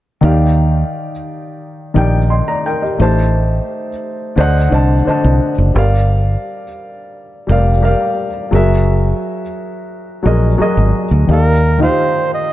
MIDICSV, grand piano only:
0, 0, Header, 1, 2, 480
1, 0, Start_track
1, 0, Key_signature, -3, "major"
1, 0, Tempo, 691244
1, 156, Time_signature, 4, 2, 24, 8
1, 8700, End_track
2, 0, Start_track
2, 0, Title_t, "Grand piano"
2, 0, Program_c, 0, 0
2, 147, Note_on_c, 0, 51, 74
2, 153, Note_on_c, 0, 63, 63
2, 162, Note_on_c, 0, 67, 66
2, 167, Note_on_c, 0, 74, 65
2, 171, Note_on_c, 0, 77, 72
2, 304, Control_c, 0, 64, 127
2, 769, Note_off_c, 0, 51, 0
2, 772, Note_off_c, 0, 63, 0
2, 776, Note_off_c, 0, 67, 0
2, 779, Note_off_c, 0, 74, 0
2, 781, Note_off_c, 0, 77, 0
2, 1348, Note_on_c, 0, 51, 69
2, 1353, Note_on_c, 0, 63, 64
2, 1360, Note_on_c, 0, 67, 60
2, 1365, Note_on_c, 0, 74, 63
2, 1373, Note_on_c, 0, 79, 74
2, 1506, Note_off_c, 0, 51, 0
2, 1509, Note_off_c, 0, 63, 0
2, 1512, Note_off_c, 0, 67, 0
2, 1514, Note_off_c, 0, 74, 0
2, 1518, Note_off_c, 0, 79, 0
2, 1599, Note_on_c, 0, 84, 56
2, 1603, Note_on_c, 0, 75, 44
2, 1711, Note_off_c, 0, 84, 0
2, 1713, Note_off_c, 0, 75, 0
2, 1722, Note_on_c, 0, 82, 63
2, 1728, Note_on_c, 0, 74, 55
2, 1832, Note_off_c, 0, 82, 0
2, 1835, Note_off_c, 0, 74, 0
2, 1848, Note_on_c, 0, 79, 66
2, 1853, Note_on_c, 0, 70, 54
2, 1956, Note_off_c, 0, 79, 0
2, 1958, Note_off_c, 0, 70, 0
2, 1961, Note_on_c, 0, 75, 56
2, 1967, Note_on_c, 0, 67, 45
2, 2072, Note_on_c, 0, 57, 68
2, 2076, Note_off_c, 0, 67, 0
2, 2079, Note_on_c, 0, 63, 65
2, 2082, Control_c, 0, 64, 0
2, 2087, Note_on_c, 0, 67, 65
2, 2094, Note_on_c, 0, 72, 70
2, 2098, Note_on_c, 0, 81, 78
2, 2186, Note_off_c, 0, 75, 0
2, 2194, Control_c, 0, 64, 127
2, 2691, Note_off_c, 0, 57, 0
2, 2694, Note_off_c, 0, 63, 0
2, 2698, Note_off_c, 0, 67, 0
2, 2702, Note_off_c, 0, 72, 0
2, 2704, Note_off_c, 0, 81, 0
2, 3028, Note_on_c, 0, 50, 72
2, 3033, Note_on_c, 0, 62, 69
2, 3043, Control_c, 0, 64, 0
2, 3044, Note_on_c, 0, 72, 69
2, 3050, Note_on_c, 0, 75, 68
2, 3058, Note_on_c, 0, 78, 80
2, 3155, Control_c, 0, 64, 127
2, 3223, Note_off_c, 0, 50, 0
2, 3225, Note_off_c, 0, 62, 0
2, 3231, Note_off_c, 0, 72, 0
2, 3234, Note_off_c, 0, 75, 0
2, 3238, Note_off_c, 0, 78, 0
2, 3261, Note_on_c, 0, 50, 70
2, 3272, Note_on_c, 0, 62, 59
2, 3280, Note_on_c, 0, 72, 60
2, 3283, Note_on_c, 0, 75, 61
2, 3293, Note_on_c, 0, 81, 79
2, 3422, Note_off_c, 0, 50, 0
2, 3427, Note_off_c, 0, 62, 0
2, 3431, Note_off_c, 0, 72, 0
2, 3433, Note_off_c, 0, 75, 0
2, 3438, Note_off_c, 0, 81, 0
2, 3507, Note_on_c, 0, 50, 67
2, 3511, Note_on_c, 0, 62, 63
2, 3522, Note_on_c, 0, 72, 64
2, 3529, Note_on_c, 0, 75, 65
2, 3536, Note_on_c, 0, 81, 74
2, 3819, Note_off_c, 0, 50, 0
2, 3821, Note_off_c, 0, 62, 0
2, 3827, Note_off_c, 0, 72, 0
2, 3830, Note_off_c, 0, 75, 0
2, 3834, Note_off_c, 0, 81, 0
2, 3987, Note_on_c, 0, 55, 67
2, 3993, Note_on_c, 0, 67, 64
2, 4000, Note_on_c, 0, 70, 65
2, 4002, Control_c, 0, 64, 0
2, 4010, Note_on_c, 0, 74, 68
2, 4016, Note_on_c, 0, 77, 82
2, 4116, Control_c, 0, 64, 127
2, 4608, Note_off_c, 0, 55, 0
2, 4611, Note_off_c, 0, 67, 0
2, 4615, Note_off_c, 0, 70, 0
2, 4620, Note_off_c, 0, 74, 0
2, 4622, Note_off_c, 0, 77, 0
2, 5187, Note_on_c, 0, 55, 69
2, 5198, Note_on_c, 0, 67, 65
2, 5204, Note_on_c, 0, 70, 63
2, 5211, Note_on_c, 0, 74, 63
2, 5220, Note_on_c, 0, 77, 76
2, 5344, Note_off_c, 0, 55, 0
2, 5350, Note_off_c, 0, 67, 0
2, 5353, Note_off_c, 0, 70, 0
2, 5357, Note_off_c, 0, 74, 0
2, 5361, Note_off_c, 0, 77, 0
2, 5425, Note_on_c, 0, 55, 73
2, 5434, Note_on_c, 0, 67, 68
2, 5437, Note_on_c, 0, 70, 64
2, 5445, Note_on_c, 0, 74, 65
2, 5451, Note_on_c, 0, 77, 78
2, 5738, Note_off_c, 0, 55, 0
2, 5743, Note_off_c, 0, 67, 0
2, 5744, Note_off_c, 0, 70, 0
2, 5748, Note_off_c, 0, 74, 0
2, 5751, Note_off_c, 0, 77, 0
2, 5909, Note_on_c, 0, 54, 70
2, 5917, Note_on_c, 0, 66, 67
2, 5919, Note_on_c, 0, 68, 67
2, 5922, Control_c, 0, 64, 0
2, 5931, Note_on_c, 0, 70, 64
2, 5936, Note_on_c, 0, 76, 76
2, 6052, Control_c, 0, 64, 127
2, 6529, Note_off_c, 0, 54, 0
2, 6533, Note_off_c, 0, 66, 0
2, 6534, Note_off_c, 0, 68, 0
2, 6540, Note_off_c, 0, 70, 0
2, 6543, Note_off_c, 0, 76, 0
2, 7101, Note_on_c, 0, 54, 68
2, 7108, Note_on_c, 0, 66, 59
2, 7117, Note_on_c, 0, 68, 62
2, 7123, Note_on_c, 0, 70, 62
2, 7128, Note_on_c, 0, 75, 72
2, 7262, Note_off_c, 0, 54, 0
2, 7265, Note_off_c, 0, 66, 0
2, 7270, Note_off_c, 0, 68, 0
2, 7273, Note_off_c, 0, 70, 0
2, 7275, Note_off_c, 0, 75, 0
2, 7347, Note_on_c, 0, 54, 75
2, 7349, Note_on_c, 0, 66, 61
2, 7358, Note_on_c, 0, 68, 64
2, 7363, Note_on_c, 0, 70, 64
2, 7372, Note_on_c, 0, 75, 79
2, 7659, Note_off_c, 0, 54, 0
2, 7660, Note_off_c, 0, 66, 0
2, 7665, Note_off_c, 0, 68, 0
2, 7668, Note_off_c, 0, 70, 0
2, 7672, Note_off_c, 0, 75, 0
2, 7828, Note_on_c, 0, 51, 59
2, 7837, Note_on_c, 0, 63, 50
2, 7842, Note_on_c, 0, 67, 57
2, 7843, Control_c, 0, 64, 0
2, 7849, Note_on_c, 0, 74, 56
2, 7856, Note_on_c, 0, 77, 67
2, 7984, Control_c, 0, 64, 127
2, 8062, Note_off_c, 0, 51, 0
2, 8067, Note_off_c, 0, 63, 0
2, 8070, Note_off_c, 0, 67, 0
2, 8073, Note_off_c, 0, 74, 0
2, 8076, Note_off_c, 0, 77, 0
2, 8184, Note_on_c, 0, 51, 68
2, 8192, Note_on_c, 0, 63, 59
2, 8197, Note_on_c, 0, 65, 47
2, 8204, Note_on_c, 0, 75, 59
2, 8212, Note_on_c, 0, 77, 71
2, 8241, Note_off_c, 0, 65, 0
2, 8243, Note_on_c, 0, 67, 57
2, 8700, Note_off_c, 0, 51, 0
2, 8700, Note_off_c, 0, 63, 0
2, 8700, Note_off_c, 0, 67, 0
2, 8700, Note_off_c, 0, 75, 0
2, 8700, Note_off_c, 0, 77, 0
2, 8700, End_track
0, 0, End_of_file